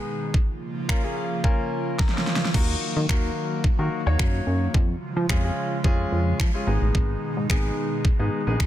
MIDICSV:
0, 0, Header, 1, 5, 480
1, 0, Start_track
1, 0, Key_signature, -6, "minor"
1, 0, Tempo, 550459
1, 297, Time_signature, 4, 2, 24, 8
1, 7555, End_track
2, 0, Start_track
2, 0, Title_t, "Grand piano"
2, 0, Program_c, 0, 0
2, 0, Note_on_c, 0, 56, 85
2, 0, Note_on_c, 0, 59, 76
2, 0, Note_on_c, 0, 63, 74
2, 0, Note_on_c, 0, 68, 90
2, 297, Note_off_c, 0, 56, 0
2, 298, Note_off_c, 0, 59, 0
2, 298, Note_off_c, 0, 63, 0
2, 299, Note_off_c, 0, 68, 0
2, 773, Note_on_c, 0, 58, 92
2, 776, Note_on_c, 0, 61, 84
2, 777, Note_on_c, 0, 65, 87
2, 778, Note_on_c, 0, 70, 95
2, 872, Note_off_c, 0, 58, 0
2, 874, Note_off_c, 0, 61, 0
2, 874, Note_off_c, 0, 65, 0
2, 875, Note_off_c, 0, 70, 0
2, 899, Note_on_c, 0, 58, 80
2, 900, Note_on_c, 0, 61, 72
2, 903, Note_on_c, 0, 65, 71
2, 903, Note_on_c, 0, 68, 86
2, 1014, Note_on_c, 0, 77, 74
2, 1174, Note_off_c, 0, 58, 0
2, 1175, Note_off_c, 0, 61, 0
2, 1176, Note_off_c, 0, 65, 0
2, 1176, Note_off_c, 0, 68, 0
2, 1239, Note_off_c, 0, 77, 0
2, 1253, Note_on_c, 0, 58, 92
2, 1255, Note_on_c, 0, 61, 87
2, 1256, Note_on_c, 0, 65, 82
2, 1256, Note_on_c, 0, 80, 70
2, 1258, Note_on_c, 0, 70, 104
2, 1703, Note_off_c, 0, 80, 0
2, 1713, Note_off_c, 0, 58, 0
2, 1715, Note_off_c, 0, 61, 0
2, 1715, Note_off_c, 0, 65, 0
2, 1716, Note_off_c, 0, 70, 0
2, 1737, Note_on_c, 0, 82, 69
2, 1863, Note_on_c, 0, 58, 78
2, 1863, Note_on_c, 0, 61, 72
2, 1866, Note_on_c, 0, 65, 73
2, 1867, Note_on_c, 0, 70, 84
2, 2136, Note_off_c, 0, 58, 0
2, 2136, Note_off_c, 0, 61, 0
2, 2137, Note_off_c, 0, 65, 0
2, 2138, Note_off_c, 0, 70, 0
2, 2184, Note_off_c, 0, 82, 0
2, 2214, Note_on_c, 0, 58, 80
2, 2215, Note_on_c, 0, 63, 74
2, 2218, Note_on_c, 0, 66, 74
2, 2220, Note_on_c, 0, 70, 89
2, 2588, Note_off_c, 0, 58, 0
2, 2589, Note_off_c, 0, 63, 0
2, 2590, Note_off_c, 0, 66, 0
2, 2591, Note_off_c, 0, 70, 0
2, 2692, Note_on_c, 0, 58, 85
2, 2695, Note_on_c, 0, 63, 73
2, 2696, Note_on_c, 0, 66, 73
2, 2698, Note_on_c, 0, 70, 90
2, 3153, Note_off_c, 0, 58, 0
2, 3155, Note_off_c, 0, 63, 0
2, 3155, Note_off_c, 0, 66, 0
2, 3156, Note_off_c, 0, 70, 0
2, 3301, Note_on_c, 0, 58, 80
2, 3302, Note_on_c, 0, 63, 70
2, 3304, Note_on_c, 0, 66, 71
2, 3305, Note_on_c, 0, 70, 89
2, 3482, Note_off_c, 0, 58, 0
2, 3483, Note_off_c, 0, 63, 0
2, 3484, Note_off_c, 0, 66, 0
2, 3484, Note_off_c, 0, 70, 0
2, 3542, Note_on_c, 0, 58, 77
2, 3543, Note_on_c, 0, 63, 77
2, 3544, Note_on_c, 0, 66, 72
2, 3547, Note_on_c, 0, 73, 92
2, 4136, Note_off_c, 0, 58, 0
2, 4137, Note_off_c, 0, 63, 0
2, 4137, Note_off_c, 0, 66, 0
2, 4139, Note_off_c, 0, 73, 0
2, 4615, Note_on_c, 0, 56, 89
2, 4617, Note_on_c, 0, 61, 83
2, 4619, Note_on_c, 0, 65, 87
2, 4619, Note_on_c, 0, 68, 95
2, 4713, Note_off_c, 0, 56, 0
2, 4714, Note_off_c, 0, 61, 0
2, 4715, Note_off_c, 0, 65, 0
2, 4715, Note_off_c, 0, 68, 0
2, 4741, Note_on_c, 0, 56, 76
2, 4743, Note_on_c, 0, 61, 76
2, 4744, Note_on_c, 0, 65, 70
2, 4747, Note_on_c, 0, 68, 88
2, 5015, Note_off_c, 0, 56, 0
2, 5016, Note_off_c, 0, 61, 0
2, 5017, Note_off_c, 0, 65, 0
2, 5018, Note_off_c, 0, 68, 0
2, 5094, Note_on_c, 0, 56, 91
2, 5096, Note_on_c, 0, 61, 87
2, 5097, Note_on_c, 0, 65, 83
2, 5098, Note_on_c, 0, 68, 107
2, 5554, Note_off_c, 0, 56, 0
2, 5555, Note_off_c, 0, 61, 0
2, 5556, Note_off_c, 0, 65, 0
2, 5556, Note_off_c, 0, 68, 0
2, 5704, Note_on_c, 0, 56, 79
2, 5705, Note_on_c, 0, 61, 70
2, 5707, Note_on_c, 0, 65, 74
2, 5708, Note_on_c, 0, 68, 91
2, 5801, Note_off_c, 0, 56, 0
2, 5806, Note_off_c, 0, 68, 0
2, 5814, Note_on_c, 0, 56, 85
2, 5816, Note_on_c, 0, 59, 75
2, 5817, Note_on_c, 0, 63, 79
2, 5818, Note_off_c, 0, 61, 0
2, 5819, Note_off_c, 0, 65, 0
2, 5819, Note_on_c, 0, 68, 93
2, 6398, Note_off_c, 0, 56, 0
2, 6398, Note_off_c, 0, 59, 0
2, 6399, Note_off_c, 0, 63, 0
2, 6400, Note_off_c, 0, 68, 0
2, 6536, Note_on_c, 0, 56, 85
2, 6536, Note_on_c, 0, 59, 72
2, 6538, Note_on_c, 0, 63, 75
2, 6540, Note_on_c, 0, 68, 96
2, 6995, Note_off_c, 0, 56, 0
2, 6995, Note_off_c, 0, 59, 0
2, 6996, Note_off_c, 0, 63, 0
2, 6997, Note_off_c, 0, 68, 0
2, 7143, Note_on_c, 0, 56, 78
2, 7145, Note_on_c, 0, 59, 72
2, 7146, Note_on_c, 0, 63, 75
2, 7148, Note_on_c, 0, 68, 86
2, 7323, Note_off_c, 0, 56, 0
2, 7324, Note_off_c, 0, 59, 0
2, 7325, Note_off_c, 0, 63, 0
2, 7326, Note_off_c, 0, 68, 0
2, 7383, Note_on_c, 0, 56, 82
2, 7384, Note_on_c, 0, 59, 72
2, 7386, Note_on_c, 0, 63, 71
2, 7387, Note_on_c, 0, 68, 89
2, 7555, Note_off_c, 0, 56, 0
2, 7555, Note_off_c, 0, 59, 0
2, 7555, Note_off_c, 0, 63, 0
2, 7555, Note_off_c, 0, 68, 0
2, 7555, End_track
3, 0, Start_track
3, 0, Title_t, "Analog synth pad"
3, 0, Program_c, 1, 89
3, 0, Note_on_c, 1, 47, 78
3, 0, Note_on_c, 1, 51, 73
3, 0, Note_on_c, 1, 56, 73
3, 0, Note_on_c, 1, 63, 86
3, 263, Note_off_c, 1, 56, 0
3, 276, Note_off_c, 1, 47, 0
3, 276, Note_off_c, 1, 51, 0
3, 277, Note_off_c, 1, 63, 0
3, 301, Note_on_c, 1, 49, 76
3, 302, Note_on_c, 1, 53, 72
3, 303, Note_on_c, 1, 58, 71
3, 304, Note_on_c, 1, 65, 83
3, 2200, Note_off_c, 1, 49, 0
3, 2200, Note_off_c, 1, 53, 0
3, 2201, Note_off_c, 1, 58, 0
3, 2202, Note_off_c, 1, 65, 0
3, 2217, Note_on_c, 1, 66, 84
3, 2219, Note_on_c, 1, 51, 76
3, 2219, Note_on_c, 1, 54, 70
3, 2219, Note_on_c, 1, 58, 69
3, 4118, Note_off_c, 1, 66, 0
3, 4119, Note_off_c, 1, 51, 0
3, 4119, Note_off_c, 1, 54, 0
3, 4119, Note_off_c, 1, 58, 0
3, 4140, Note_on_c, 1, 65, 84
3, 4141, Note_on_c, 1, 49, 77
3, 4141, Note_on_c, 1, 53, 74
3, 4141, Note_on_c, 1, 56, 69
3, 5802, Note_off_c, 1, 49, 0
3, 5802, Note_off_c, 1, 65, 0
3, 5803, Note_off_c, 1, 53, 0
3, 5818, Note_on_c, 1, 63, 87
3, 5819, Note_on_c, 1, 51, 71
3, 5820, Note_on_c, 1, 47, 81
3, 7555, Note_off_c, 1, 47, 0
3, 7555, Note_off_c, 1, 51, 0
3, 7555, Note_off_c, 1, 56, 0
3, 7555, Note_off_c, 1, 63, 0
3, 7555, End_track
4, 0, Start_track
4, 0, Title_t, "Analog synth bass"
4, 0, Program_c, 2, 38
4, 2218, Note_on_c, 2, 39, 108
4, 2403, Note_off_c, 2, 39, 0
4, 2583, Note_on_c, 2, 51, 93
4, 2670, Note_off_c, 2, 51, 0
4, 2696, Note_on_c, 2, 39, 91
4, 2882, Note_off_c, 2, 39, 0
4, 3176, Note_on_c, 2, 51, 48
4, 3227, Note_off_c, 2, 51, 0
4, 3303, Note_on_c, 2, 51, 91
4, 3391, Note_off_c, 2, 51, 0
4, 3545, Note_on_c, 2, 39, 90
4, 3632, Note_off_c, 2, 39, 0
4, 3657, Note_on_c, 2, 42, 88
4, 3842, Note_off_c, 2, 42, 0
4, 3896, Note_on_c, 2, 42, 90
4, 4081, Note_off_c, 2, 42, 0
4, 4137, Note_on_c, 2, 41, 113
4, 4322, Note_off_c, 2, 41, 0
4, 4504, Note_on_c, 2, 53, 102
4, 4591, Note_off_c, 2, 53, 0
4, 4617, Note_on_c, 2, 41, 86
4, 4802, Note_off_c, 2, 41, 0
4, 5096, Note_on_c, 2, 41, 99
4, 5281, Note_off_c, 2, 41, 0
4, 5338, Note_on_c, 2, 41, 81
4, 5523, Note_off_c, 2, 41, 0
4, 5578, Note_on_c, 2, 53, 101
4, 5676, Note_off_c, 2, 53, 0
4, 5816, Note_on_c, 2, 32, 94
4, 5915, Note_off_c, 2, 32, 0
4, 5944, Note_on_c, 2, 33, 80
4, 6031, Note_off_c, 2, 33, 0
4, 6058, Note_on_c, 2, 32, 113
4, 6243, Note_off_c, 2, 32, 0
4, 6426, Note_on_c, 2, 44, 92
4, 6512, Note_off_c, 2, 44, 0
4, 6537, Note_on_c, 2, 32, 96
4, 6722, Note_off_c, 2, 32, 0
4, 7016, Note_on_c, 2, 44, 48
4, 7068, Note_off_c, 2, 44, 0
4, 7145, Note_on_c, 2, 44, 92
4, 7232, Note_off_c, 2, 44, 0
4, 7385, Note_on_c, 2, 34, 93
4, 7472, Note_off_c, 2, 34, 0
4, 7499, Note_on_c, 2, 35, 96
4, 7555, Note_off_c, 2, 35, 0
4, 7555, End_track
5, 0, Start_track
5, 0, Title_t, "Drums"
5, 298, Note_on_c, 9, 36, 108
5, 385, Note_off_c, 9, 36, 0
5, 777, Note_on_c, 9, 36, 103
5, 779, Note_on_c, 9, 26, 100
5, 865, Note_off_c, 9, 36, 0
5, 866, Note_off_c, 9, 26, 0
5, 1256, Note_on_c, 9, 36, 99
5, 1343, Note_off_c, 9, 36, 0
5, 1737, Note_on_c, 9, 38, 56
5, 1738, Note_on_c, 9, 36, 123
5, 1819, Note_off_c, 9, 38, 0
5, 1819, Note_on_c, 9, 38, 57
5, 1825, Note_off_c, 9, 36, 0
5, 1900, Note_off_c, 9, 38, 0
5, 1900, Note_on_c, 9, 38, 69
5, 1980, Note_off_c, 9, 38, 0
5, 1980, Note_on_c, 9, 38, 67
5, 2059, Note_off_c, 9, 38, 0
5, 2059, Note_on_c, 9, 38, 90
5, 2138, Note_off_c, 9, 38, 0
5, 2138, Note_on_c, 9, 38, 84
5, 2218, Note_on_c, 9, 36, 112
5, 2218, Note_on_c, 9, 49, 80
5, 2226, Note_off_c, 9, 38, 0
5, 2305, Note_off_c, 9, 36, 0
5, 2306, Note_off_c, 9, 49, 0
5, 2697, Note_on_c, 9, 36, 104
5, 2698, Note_on_c, 9, 26, 101
5, 2784, Note_off_c, 9, 36, 0
5, 2785, Note_off_c, 9, 26, 0
5, 3175, Note_on_c, 9, 36, 96
5, 3262, Note_off_c, 9, 36, 0
5, 3657, Note_on_c, 9, 36, 115
5, 3658, Note_on_c, 9, 26, 107
5, 3744, Note_off_c, 9, 36, 0
5, 3745, Note_off_c, 9, 26, 0
5, 4137, Note_on_c, 9, 36, 114
5, 4224, Note_off_c, 9, 36, 0
5, 4617, Note_on_c, 9, 36, 101
5, 4618, Note_on_c, 9, 26, 102
5, 4704, Note_off_c, 9, 36, 0
5, 4705, Note_off_c, 9, 26, 0
5, 5096, Note_on_c, 9, 36, 94
5, 5183, Note_off_c, 9, 36, 0
5, 5578, Note_on_c, 9, 36, 124
5, 5579, Note_on_c, 9, 26, 114
5, 5665, Note_off_c, 9, 36, 0
5, 5666, Note_off_c, 9, 26, 0
5, 6058, Note_on_c, 9, 36, 115
5, 6146, Note_off_c, 9, 36, 0
5, 6538, Note_on_c, 9, 36, 105
5, 6539, Note_on_c, 9, 26, 99
5, 6625, Note_off_c, 9, 36, 0
5, 6626, Note_off_c, 9, 26, 0
5, 7017, Note_on_c, 9, 36, 103
5, 7104, Note_off_c, 9, 36, 0
5, 7499, Note_on_c, 9, 36, 121
5, 7501, Note_on_c, 9, 26, 108
5, 7555, Note_off_c, 9, 26, 0
5, 7555, Note_off_c, 9, 36, 0
5, 7555, End_track
0, 0, End_of_file